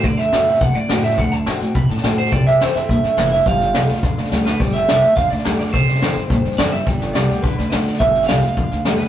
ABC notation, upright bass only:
X:1
M:4/4
L:1/8
Q:1/4=211
K:Gmix
V:1 name="Upright bass" clef=bass
D,,2 G,, A,, C, A,, A,,2 | D,,2 G,, A,, C, A,, A,,2 | C,,2 F,, G,, _B,, G,, F,,,2 | G,,,2 C,, D,, F,, D,, D,,2 |
G,,,2 C,, D,, F,, D,, D,,2 | C,,2 F,, G,, _B,, G,, G,,2 | G,,,2 C,, D,, F,, D,, D,,2 | G,,,2 C,, D,, F,, D,, D,,2 |]